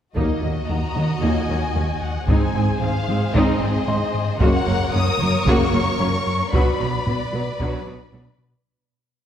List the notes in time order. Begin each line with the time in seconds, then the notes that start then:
0.16 D#2 A#2 F#3 A#3 D#4 F#4 D#5, taiko
0.42 D#2 F#3 A#3
0.68 D#2 A#3 F#5 A#5
0.95 D#2 D#3 F#3 A#3
1.22 D#2 A#2 F#3 A#3 D#4 G#5
1.49 D#2 F#3 A#3
1.75 D#2 A#3
2.02 D#2 F#5
2.28 G#1 G#2 G#3 C4 D#4 G#4 C5 G#5, taiko
2.55 G#1 G#2 G#3 C4 G#5
2.81 G#1 G#2 C4 F5
3.07 G#1 G#2 G#3 C4
3.34 G#1 G#2 G#3 C4 D#4 D#5, taiko
3.61 G#1 G#2 G#3 C4
3.87 G#1 G#2 C4 D#5 C6
4.14 G#2
4.40 F#1 F#2 C#3 A#3 C#4 F#4 A#4 C#5 F#5, taiko
4.67 F#1 F#2 A#3
4.93 F#1 F#2 A#3 C#4 D#6
5.20 F#1 F#2 F#3 A#3
5.47 F#1 F#2 C#3 A#3 C#4 F#4 C#6, taiko
5.73 F#1 F#2 A#3
6.00 F#1 F#2 A#3 C#4 C#6
6.27 F#2
6.53 B1 B2 F#3 B3 D4 F#4 B4 D5 B5, taiko
6.80 B1 B2 F#3 B3
7.06 B1 B2 F#3 D4, taiko low-mid
7.33 B1 B2 F#3 B3
7.59 B1 B2 F#3 B3 D4 F#4, taiko
7.86 B1 B2 F#3 B3
8.12 B1 B2 F#3 D4
8.39 B2